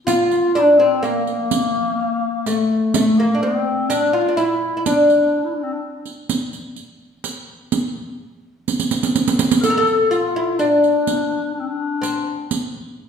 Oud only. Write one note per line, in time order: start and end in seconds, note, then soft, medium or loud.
0.07 0.55 F4 loud
0.55 0.79 D4 medium
0.80 1.04 C4 medium
1.03 2.47 A#3 medium
2.47 2.94 A3 medium
2.95 3.19 A3 medium
3.20 3.36 A#3 medium
3.35 3.42 D4 medium
3.43 3.92 C4 medium
3.90 4.13 D4 medium
4.13 4.28 F4 medium
4.29 4.37 D4 medium
4.37 4.76 E4 medium
4.77 4.85 E4 medium
4.86 5.77 D4 medium
9.64 9.70 A4 loud
9.70 9.77 A#4 medium
9.78 10.12 A4 loud
10.11 10.36 F4 medium
10.36 10.58 E4 medium
10.59 12.07 D4 medium
12.02 12.47 C4 medium